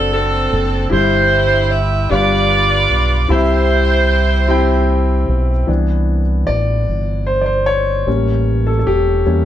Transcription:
Already playing: F#1 C4 D4 F#4 A4 D5
0.13 C4 D4 A4
0.52 F#1
0.89 G1 G2 E4 G4 C5
0.94 E4
1.72 E5
2.09 G1 G2 D4 F4 G4 B4 D5 F5
2.90 B1
3.28 C2 C3 C4 E4 G4 C5 E5 B5
3.32 E4 G4
4.47 C4 E4 G4 G5 B5
5.28 B1
5.67 C2 E3 B3 D4
6.47 A1 D5
6.88 G1
7.27 C5
7.41 D5
7.46 C5
7.66 C#5
8.07 A1 G3 A#3 C#4
8.67 A4
8.79 A4
8.86 E1 G4
9.26 E2 G3 A#3 C#4

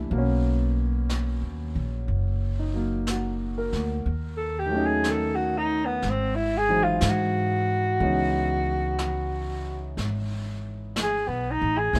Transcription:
Already playing: E3 G3 A3 A#3 D4 E4
0.10 B1 F#3 A#3, brush sweep
0.16 B3 C#4
1.09 brush sweep, snare, hi-hat pedal
1.42 D#2
1.75 A#1
2.08 F#1, brush sweep
2.59 D#4
2.73 F#3 A#3
3.07 F#4, brush sweep, snare, hi-hat pedal
3.58 A#4
3.73 D2, snare
4.05 D#2, brush sweep
4.37 A4
4.59 G4
4.66 D#3 F#3
4.71 A3 C#4
4.77 D#4
4.86 G#4
5.04 brush sweep, snare, hi-hat pedal
5.10 A4
5.35 F#4
5.58 D#4
5.85 B3
6.02 G#1, brush sweep, snare
6.10 C4
6.35 E4
6.58 G#4
6.69 E3 F#3 G#3 C4 D#4
6.83 F4
7.01 G#2, brush sweep, snare, hi-hat pedal
7.09 F#4
7.99 C#2 E3 G#3 B3 C#4, brush sweep
8.05 D#4
8.98 brush sweep, snare, hi-hat pedal
9.97 G#1, brush sweep, snare
10.96 brush sweep, snare, hi-hat pedal
11.03 G#4
11.28 B1 B3
11.51 D#4
11.62 A1
11.78 G#4
11.93 A#1 G#3 A#3 C4 C#4 E4, brush sweep, snare

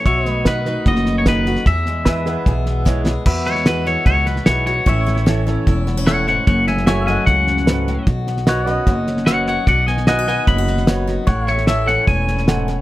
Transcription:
0.05 B1 B2 F#4 C#5 E5, kick, snare
0.26 A3 D#5, snare
0.31 B4
0.45 D#3 D#4 F#4 B4, kick, snare, hi-hat pedal
0.65 D#4 F#4 B4, snare
0.85 F#1 F#2 F#4 D#5, kick, snare
0.96 snare
1.06 D#4, snare
1.18 C#5
1.26 D#3 A3 D#4 F#4 B4, kick, snare, hi-hat pedal
1.46 F#4, snare
1.56 snare
1.66 E2 G#4 E5, kick, snare
1.86 G#3, snare
2.05 E3 E4 G#4 B4 E5, kick, snare, hi-hat pedal
2.26 B3 E4 G#4 B4, snare
2.46 B1 B2 G#4, kick, snare
2.66 B3, snare
2.85 E3 G#3 E4 G#4 C#5, kick, snare, hi-hat pedal
3.06 G#4, snare
3.26 E2 F#4 B4 E5, kick, snare, crash
3.46 G#3 C#5, snare
3.55 snare
3.66 E3 E4 F#4 G#4 B4, snare, hi-hat pedal
3.86 B3 E4 G#4 C#5, snare
4.05 C#2 B2 F#4 C#5, kick, snare
4.26 B3 B4, snare
4.36 snare
4.46 B1 E3 G#3 E4 G#4 B4 C#5, snare, hi-hat pedal
4.66 F#4 C#5, snare
4.86 A1 A2 E3 A3 C#4 E4 C#5 E5, kick, snare
5.06 A3, snare
5.17 snare
5.26 E3 E4 A4 C#5, snare, hi-hat pedal
5.47 C#4 E4 A4 C#5, snare
5.67 E1 E2 E4, kick, snare
5.87 B3, snare
5.97 C#4, snare
6.06 A2 E4 A4 C#5 F#5, snare, hi-hat pedal
6.28 G#2 C#5 F#5, snare
6.47 F#1 F#2 E4 C#5 F#5, kick, snare
6.68 A3 E5 G#5, snare
6.77 snare
6.86 F#3 E4 F#4 A4 C#5 E5 G#5, snare, hi-hat pedal
7.06 C#4 F#4 A4 D#5 E5 G#5, snare
7.14 F#5
7.26 C#2 C#3 E4 F#5, kick, snare
7.47 C#4, snare
7.57 snare
7.66 G#2 F#4 A4 B4, snare, hi-hat pedal
7.87 A2, snare
8.07 B1 B2 F#4, kick, snare
8.27 B3, snare
8.37 snare
8.46 D#3 F#4 B4 C#5 D#5 F#5, snare, hi-hat pedal
8.66 C#4 F#4 B4 D#5, snare
8.74 D#5
8.87 F#1 F#2 F#4, kick, snare
9.07 C#4, snare
9.17 snare
9.26 D#3 B3 F#4 B4 C#5 D#5 F#5, snare, hi-hat pedal
9.47 F#4 C#5 F#5, snare
9.67 B1 B2 F#4 D5 F#5, kick, snare
9.87 B3 D#5 G#5, snare
9.97 snare
10.07 D#3 E4 F#4 B4 D#5 F#5 G#5, snare, hi-hat pedal
10.19 F#4
10.27 D#4 F#4 B4 D#5 G#5, snare
10.47 F#1 F#2 E4 B5, kick, snare
10.58 F#4
10.67 D#4, snare
10.77 snare
10.87 D#3 B3 F#4 B4 C#5, snare, hi-hat pedal
11.07 F#4, snare
11.27 A1 A2 E4 C#5 F#5, kick, snare
11.48 A3 C#5, snare
11.53 E5
11.58 snare
11.67 E3 E4 A4 C#5 E5, snare, hi-hat pedal
11.86 C#4 A4 C#5 E5 F#5, snare
12.07 E1 E2 E4 G#5, kick, snare
12.28 C#4, snare
12.38 snare
12.47 G#2 A4 C#5 F#5, snare, hi-hat pedal
12.68 A2, snare

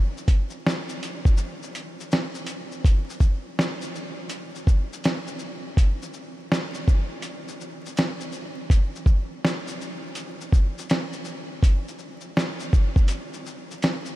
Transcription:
0.17 shaker
0.28 kick, closed hi-hat, shaker
0.50 shaker
0.66 snare, shaker
0.89 shaker
1.03 closed hi-hat, shaker
1.25 kick, shaker
1.37 shaker
1.63 shaker
1.75 closed hi-hat, shaker
2.00 shaker
2.12 snare, shaker
2.35 shaker
2.46 closed hi-hat, shaker
2.71 shaker
2.85 kick, closed hi-hat, shaker
3.10 shaker
3.20 kick, shaker
3.59 snare, closed hi-hat, shaker
3.81 shaker
3.95 shaker
4.29 closed hi-hat, shaker
4.55 shaker
4.67 kick, shaker
4.93 shaker
5.04 snare, closed hi-hat, shaker
5.27 shaker
5.39 shaker
5.77 kick, closed hi-hat, shaker
6.02 shaker
6.13 shaker
6.52 snare, closed hi-hat, shaker
6.74 shaker
6.88 kick, shaker
7.22 closed hi-hat, shaker
7.48 shaker
7.61 shaker
7.86 shaker
7.97 snare, closed hi-hat, shaker
8.21 shaker
8.32 shaker
8.70 kick, closed hi-hat, shaker
8.96 shaker
9.06 kick, shaker
9.45 snare, closed hi-hat, shaker
9.67 shaker
9.81 shaker
10.15 closed hi-hat, shaker
10.41 shaker
10.52 kick, shaker
10.78 shaker
10.90 snare, closed hi-hat, shaker
11.13 shaker
11.25 shaker
11.63 kick, closed hi-hat, shaker
11.88 shaker
11.99 shaker
12.21 shaker
12.37 snare, closed hi-hat, shaker
12.60 shaker
12.73 kick, shaker
12.96 kick, shaker
13.08 closed hi-hat, shaker
13.34 shaker
13.46 shaker
13.71 shaker
13.82 snare, closed hi-hat, shaker
14.06 shaker

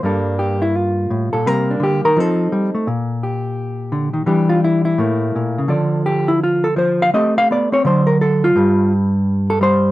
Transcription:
0.03 G2 G3 A#3 D4 A4
0.39 G4
0.62 E4
0.77 F4
1.10 A2
1.33 A#2 A4
1.46 C3 G3 A#3 A#4
1.71 D4
1.80 D3 G4
2.05 D#3 A#4
2.16 F3 C4 D#4 A4
2.52 G3
2.75 A3
2.87 A#2
3.23 G4
3.92 D3
4.14 D#3
4.26 E3 G3 D4 G4
4.49 F4
4.64 E4
4.85 E4
4.98 A2 A3 A#3
5.36 A#2
5.58 C#3
5.68 D3 F3 A4 D5
6.06 G4
6.28 E4
6.44 F4
6.64 A4
6.76 F3 C5
7.02 F5
7.14 A3 C4 G4 A4 D#5
7.38 F5
7.51 B3 D5
7.72 C4 C#5
7.85 D3 F#3 D4 C5
8.07 A#4
8.21 A4
8.44 F4
8.56 G2 G3
9.50 A4
9.61 G3 C5

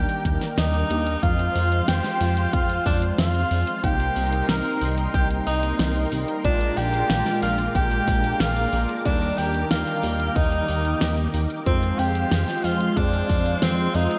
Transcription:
Already playing: D#3 G3 A#3 D4 G4 A#4 G5 D6
0.09 closed hi-hat
0.25 D#2, kick, closed hi-hat
0.41 snare, closed hi-hat
0.58 D#2 D#4 D#5, snare, closed hi-hat
0.74 closed hi-hat
0.90 D#2 G3 A#3 D4 D#4, closed hi-hat
1.07 closed hi-hat
1.23 F2 F3 G#3 C4 F4 C5 F5 C6, kick, closed hi-hat
1.39 closed hi-hat
1.55 F2, open hi-hat
1.72 closed hi-hat
1.88 F2 G4 G5, snare, closed hi-hat
2.04 snare, closed hi-hat
2.21 F2, open hi-hat
2.37 closed hi-hat
2.53 F2 F4 F5, kick, closed hi-hat
2.70 closed hi-hat
2.86 F2 D4 D5, kick, open hi-hat
3.02 closed hi-hat
3.18 F2 F4 F5, snare, closed hi-hat
3.35 closed hi-hat
3.51 F2 F3 G#3 C4 F4, open hi-hat
3.67 closed hi-hat
3.84 C2 C3 G3 A#3 C4 D#4 G4 A#4 G5 C6, kick, closed hi-hat
4.00 closed hi-hat
4.16 C2, open hi-hat
4.33 closed hi-hat
4.49 C2 A#4 A#5, snare, closed hi-hat
4.65 closed hi-hat
4.82 C2, open hi-hat
4.98 closed hi-hat
5.14 C2 G4 G5, kick, closed hi-hat
5.30 closed hi-hat
5.47 C2 D#4 D#5, open hi-hat
5.63 closed hi-hat
5.79 C2, snare, closed hi-hat
5.96 closed hi-hat
6.12 C2 G3 A#3 C4 D#4, open hi-hat
6.28 closed hi-hat
6.45 A#1 A#2 G#3 A#3 D4 F4 D5 D6, kick, closed hi-hat
6.61 closed hi-hat
6.77 A#1 G4 G5, open hi-hat
6.93 closed hi-hat
7.10 A#1, snare, closed hi-hat
7.26 snare, closed hi-hat
7.42 A#1 F4 F5, open hi-hat
7.59 closed hi-hat
7.75 A#1 G4 G5, kick, closed hi-hat
7.91 closed hi-hat
8.08 A#1, kick, open hi-hat
8.24 closed hi-hat
8.40 A#1 F4 F5, snare, closed hi-hat
8.57 closed hi-hat
8.73 A#1 G#3 A#3 D4 F4, open hi-hat
8.89 closed hi-hat
9.05 D#2 D#3 G3 A#3 D4 D5 G5, kick, closed hi-hat
9.22 closed hi-hat
9.38 D#2 G4 G5, open hi-hat
9.54 closed hi-hat
9.71 D#2 F4 F5, snare, closed hi-hat
9.87 closed hi-hat
10.03 D#2, open hi-hat
10.20 closed hi-hat
10.36 D#2 D#4 D#5, kick, closed hi-hat
10.52 closed hi-hat
10.68 D#2 G3 A#3 D#4, open hi-hat
10.85 closed hi-hat
11.01 D#2, snare, closed hi-hat
11.17 G3 A#3 D4 D#4, closed hi-hat
11.34 D#2, open hi-hat
11.50 closed hi-hat
11.66 F2 F3 G#3 C4 F4 C5 F5 C6, kick, closed hi-hat
11.83 closed hi-hat
11.99 F2 G4 G5, open hi-hat
12.15 closed hi-hat
12.32 F2, snare, closed hi-hat
12.48 snare, closed hi-hat
12.64 F2 F4 F5, open hi-hat
12.80 closed hi-hat
12.97 F2 D4 D5, kick, closed hi-hat
13.13 closed hi-hat
13.29 F2, kick, open hi-hat
13.46 closed hi-hat
13.62 F2 C4 C5, snare, closed hi-hat
13.78 closed hi-hat
13.95 F2 F3 G#3 C4 D#4 F4 D#5, open hi-hat
14.11 closed hi-hat

